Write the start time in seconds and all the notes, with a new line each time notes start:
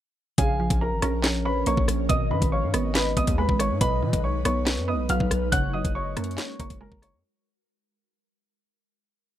0.38 A#1 C#3 F3 C#4 G#4 A#4 F5 G#5, kick, closed hi-hat
0.60 F3
0.70 A#1, kick, closed hi-hat
0.81 A#4 A#5
0.92 G#1
1.02 A#1 C#4 A#4 A#5, cross-stick, closed hi-hat
1.24 C#5, snare, clap, closed hi-hat
1.45 C#4 B4 C#5 B5
1.66 A#1 A#3 C#5 C#6, closed hi-hat
1.77 A#1, kick
1.88 A#1, cross-stick, closed hi-hat
2.09 G#1 B2 G#3 D#4 B4 D#5 D#6, kick, closed hi-hat
2.31 G#2 D#3 B4 B5
2.42 G#1, kick, closed hi-hat
2.52 C#5 F5 C#6
2.63 G#2
2.73 G#1 B3 D#5, cross-stick, closed hi-hat
2.95 B4 B5, snare, clap, closed hi-hat
3.17 G#1 B3 D#5 D#6, kick, closed hi-hat
3.27 D#2, kick, closed hi-hat
3.38 G#3 B4 B5
3.49 G#1, kick
3.59 C#5 C#6, cross-stick, closed hi-hat
3.70 G#2
3.81 B1 B2 F#3 D#4 B4 D#5 B5, kick, closed hi-hat
4.02 B2 D#3
4.13 B1, kick, closed hi-hat
4.24 C#5 C#6
4.45 B1 B3 C#5 C#6, cross-stick, closed hi-hat
4.67 B4, snare, clap, closed hi-hat
4.77 F#2
4.88 B3 B4 D#5 D#6
4.93 B1
5.09 B1 F#3 F5 F6, closed hi-hat
5.20 B1, kick
5.31 B1, cross-stick, closed hi-hat
5.52 F#1 C#3 G#3 F#4 A#4 C#5 F#5 F#6, kick, closed hi-hat
5.73 F#3 D#5 D#6
5.85 F#1, kick, closed hi-hat
5.95 C#5 D#5 C#6
6.17 F#2 A#3 C#5, cross-stick, closed hi-hat
6.24 closed hi-hat
6.31 closed hi-hat
6.38 C#4, snare, clap, closed hi-hat
6.60 F#1 A#3 C#5 C#6, kick, closed hi-hat
6.70 F#1, kick, closed hi-hat
6.81 G#3 A#4 A#5
6.92 F#1, kick
7.02 C#5 C#6, cross-stick, closed hi-hat
7.13 F#2